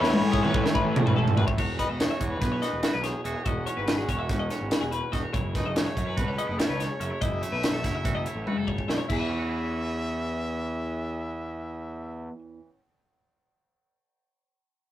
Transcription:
Already playing: A2 E3 A3 C#4 E4 C#5
0.01 E2 B4, snare
0.14 high tom
0.22 A2 G#4
0.32 G#4, kick
0.43 B4, mid tom
0.54 A2, kick
0.64 C#5, snare
0.74 A1 B4, kick
0.85 A1
0.95 G#4, mid tom
1.06 B4, floor tom
1.16 A1 A4
1.28 floor tom
1.37 F1 B4, floor tom
1.47 C#5, kick
1.58 E1 E2 F#4 C#5, kick, crash
1.79 C#4 B4 D#5, kick, closed hi-hat
1.89 E1 D#5
2.00 C#5, snare, closed hi-hat
2.10 E5
2.20 E2 E3 F#4 C#5, kick, closed hi-hat
2.30 B4
2.41 B1 G#4 B4, kick, snare, closed hi-hat
2.52 C#5
2.62 F#4 D#5, snare, closed hi-hat
2.73 E1
2.82 B2 F#4 B4 E5, snare, closed hi-hat
2.93 B1 G#4 B4
3.03 G#4 C#5, snare, closed hi-hat
3.24 E1 E2 F#4 G#4 E5, closed hi-hat
3.35 C#5
3.44 E1 E2 C#4 F#4 D#5, kick, closed hi-hat
3.67 C#4 C#5, closed hi-hat
3.77 G#1 B4
3.88 snare, closed hi-hat
3.98 G#4
4.08 E1 E3 C#4 C#5, kick, closed hi-hat
4.19 E5
4.29 E1 C#4, kick, snare, closed hi-hat
4.39 D#5
4.50 C#4 C#5, snare, closed hi-hat
4.61 G#1
4.71 B2 C#4 B4, snare, closed hi-hat
4.81 E1 G#4
4.91 B4, closed hi-hat
5.12 E1 E2 F#4 D#5, kick, snare, closed hi-hat
5.23 C#5
5.33 F#1 F#2 E4 C#5, kick, closed hi-hat
5.55 A3 B4 D#5, kick, snare, closed hi-hat
5.66 F#1 D#5
5.76 C#5, snare, closed hi-hat
5.86 E5
5.95 F#2 F#3 C#4 C#5, kick, closed hi-hat
6.06 E4 B4
6.17 C#2 F#4 B4, kick, closed hi-hat
6.26 A4 C#5
6.37 C#4 D#5, closed hi-hat
6.47 F#1 E4
6.58 C#3 A4 C#5 E5, snare, closed hi-hat
6.69 C#2 B4
6.80 C#5, snare, closed hi-hat
6.99 F#1 F#2 C#4 E5, closed hi-hat
7.10 E4 C#5
7.21 F#1 F#2 E4 D#5 E5, kick, closed hi-hat
7.42 A3 C#5, closed hi-hat
7.52 B1 B4
7.63 snare, closed hi-hat
7.74 A4
7.83 F#1 F#3 E4 C#5, kick, snare, closed hi-hat
7.95 E5
8.05 F#1 F#4, kick, closed hi-hat
8.15 A4 D#5
8.26 E4 C#5, closed hi-hat
8.35 A1
8.46 C#3 F#4 B4, high tom
8.57 F#1 A4
8.67 C#5, kick
8.78 kick
8.88 B1 F#2 E4 D#5, snare
8.98 C#5
9.09 E2 E4 G#4 E5, kick, crash
9.16 E3 B4
9.21 E5
9.29 C#4
9.39 F#4
9.49 G#4

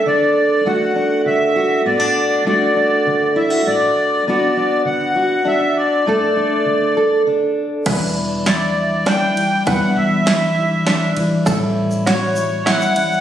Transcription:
Already playing: A3 A4
0.06 D3 D4 D5
0.65 D2 A3 D4 F#4 F#5
0.96 D4
1.26 D3 E5
1.56 F#4
1.86 A2 B3 D5
2.00 D4
2.45 D2 A3 D4 F#4 D5
2.76 D4
3.07 D3
3.36 E4 E5
3.50 F#4
3.66 A2 D4 D5
4.27 D2 B3 D4 F#4 D5
4.57 D4
4.85 D3 F#5
5.16 F#4
5.45 D2 D4 E5
5.76 D5
6.06 G2 A3 D4 A4
6.37 D4
6.66 D3
6.97 A4
7.27 D3 D4
7.86 E2 B2 E3 G3 D4 E4 B4, kick, crash, ride
8.46 E3 G3 D4 E4 D5, snare, ride
9.06 E3 G3 D4 E4 G5, snare, ride
9.35 E3 G3 D4 E4, ride
9.66 E2 B2 E3 G3 D4 E4 B4 F#5, kick, ride
9.95 E3 E5
10.25 E3 G3 D4 E4, snare, ride
10.57 E3 G3 D4 E4
10.87 E3 G3 D4 E4, snare, ride
11.17 E3 G3 D4 E4, ride
11.46 A1 A2 E3 G3 C#4 E4 A4, kick, ride, shaker
11.91 shaker
12.05 E3 G3 C#4 E4 F#4 C#5, snare, ride
12.36 G3 C#4 E4, shaker
12.66 E3 G3 C#4 E4 F#5, snare, ride
12.81 shaker
12.96 G3 C#4 E4, ride
13.12 shaker

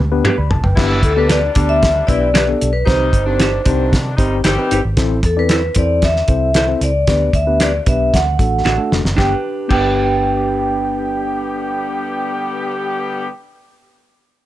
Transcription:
0.00 D2
0.12 B3 D4 G4 B4
0.25 D4 G4 B4, finger snap, mid tom
0.38 D2 D5 B5
0.50 F1 A5, floor tom
0.64 F#1 B4 G5, floor tom
0.76 G1 B2 E3 G3 B3 D4 E4 G4 B4, kick, snare, crash
1.03 D2 A4, kick, closed hi-hat
1.15 B2 D3 G3 B3 D4 G4 A4 B4
1.29 D4 G4 B4 D5, finger snap, snare, closed hi-hat
1.53 D2 B2 D3 G3 B3 D4 G4 D5, kick, closed hi-hat
1.69 E5
1.83 kick, snare, closed hi-hat
2.07 B1 E3 B3 C4 D4 E4 G4 B4 D5, kick, closed hi-hat
2.34 D4 G4 B4, finger snap, snare, closed hi-hat
2.48 B3 D4 G4 A4
2.61 B1, closed hi-hat
2.73 B4
2.85 C2 C3 D#3 G3 C4 D#4 G4 C5, kick, snare, closed hi-hat
3.13 G1, kick, closed hi-hat
3.25 G2 D3 D#3 C4 D4 D#4 G4 C5
3.40 D#4 G4 C5, finger snap, snare, closed hi-hat
3.64 C2 G2 D3 D#3 C4 D4 D#4 G4 C5, kick, closed hi-hat
3.93 C3, kick, snare, closed hi-hat
4.17 G1 C3 D#3 G3 C4 D#4 G4 C5, kick, closed hi-hat
4.44 G1 D#3 G3 C4 D#4 G4 C5, finger snap, snare, closed hi-hat
4.58 C4 D#4 G4 B4
4.71 G1 D#4 G4 C5, closed hi-hat
4.85 G#1
4.97 A1 C4 E4 A4 C5, kick, snare, closed hi-hat
5.23 E2 A4, kick, closed hi-hat
5.36 C4 E4 A4 B4 D5
5.49 E4 A4 C5, finger snap, snare, closed hi-hat
5.75 E2 C4 E4 A4 C5 D5, kick, closed hi-hat
6.02 E5, kick, snare, closed hi-hat
6.16 snare
6.28 C2 C4 E4 A4 C5, kick, closed hi-hat
6.54 E4 A4 C5, finger snap, snare, closed hi-hat
6.68 C4 E4 A4 C5
6.81 C#2 D5, closed hi-hat
7.07 D2 B3 D4 G4 B4 D5, kick, snare, closed hi-hat
7.33 D2 E5, kick, closed hi-hat
7.47 B3 D4 G4 B4
7.60 D4 G4 B4 D5, finger snap, snare, closed hi-hat
7.86 B1 B3 D4 G4 B4 E5, kick, closed hi-hat
8.13 D2 F#5, kick, snare, closed hi-hat
8.39 A1 A3 D4 F#4 A4, kick, closed hi-hat
8.65 A1 D4 F#4 A4, finger snap, snare
8.78 A3 D4 F#4 A4
8.92 F1, snare
9.04 F#1, snare
9.15 G1 D3 G3 B3 D4 G4 B4 G5, finger snap, kick, snare
9.19 G4 B4
9.68 G1 D3 G3 B3 D4 G4 G5, finger snap, kick, crash
9.72 B4

